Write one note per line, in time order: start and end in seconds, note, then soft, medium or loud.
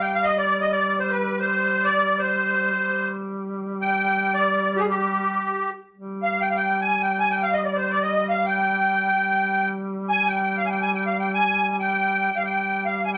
0.00 2.73 G3 medium
0.00 0.12 G5 medium
0.14 0.25 F5 medium
0.24 0.37 D#5 medium
0.38 0.60 D5 medium
0.61 0.72 D#5 medium
0.72 0.99 D5 medium
0.99 1.12 C5 medium
1.11 1.39 B4 medium
1.39 1.86 C5 medium
1.84 2.20 D5 medium
2.19 3.09 C5 medium
2.74 5.77 G3 medium
3.81 4.33 G5 medium
4.34 4.75 D5 medium
4.76 4.81 G4 medium
4.76 4.86 G#4 soft
4.89 5.70 G4 medium
5.94 9.12 G3 medium
6.23 6.42 F5 medium
6.41 6.49 G5 medium
6.50 6.56 F5 medium
6.56 6.80 G5 medium
6.81 7.02 G#5 medium
7.01 7.17 G5 medium
7.19 7.32 G#5 medium
7.30 7.43 G5 medium
7.42 7.54 F5 medium
7.53 7.61 D#5 medium
7.63 7.71 D5 medium
7.63 7.65 D#5 soft
7.73 7.91 C5 medium
7.73 7.77 D5 soft
7.90 8.03 D5 medium
8.02 8.26 D#5 medium
8.29 8.45 F5 medium
8.46 9.69 G5 medium
9.13 12.31 G3 medium
10.09 10.27 G#5 medium
10.27 10.41 G5 medium
10.43 10.57 G5 medium
10.58 10.67 F5 medium
10.66 10.68 G#5 medium
10.70 10.81 G5 medium
10.82 10.92 G#5 medium
10.94 11.04 G5 medium
11.06 11.17 F5 medium
11.19 11.32 G5 medium
11.34 11.69 G#5 medium
11.70 11.76 G#5 medium
11.80 12.30 G5 medium
12.32 13.18 G3 medium
12.32 12.38 G5 medium
12.36 12.43 F5 medium
12.45 12.85 G5 medium
12.85 13.04 F5 medium
13.05 13.11 G#5 medium
13.14 13.18 G5 medium